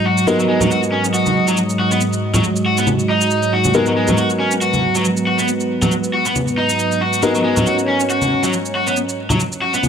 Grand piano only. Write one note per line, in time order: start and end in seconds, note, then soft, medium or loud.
0.00 0.24 B3 medium
0.00 0.25 A#4 medium
0.27 3.73 B3 medium
0.27 3.73 D#4 medium
0.27 3.73 F#4 medium
0.27 3.73 A#4 medium
3.74 7.20 B3 medium
3.74 7.20 D#4 medium
3.74 7.20 F#4 medium
3.74 7.20 A#4 medium
7.23 9.89 B3 medium
7.23 9.89 D#4 medium
7.23 9.89 F#4 medium
7.23 9.89 A#4 medium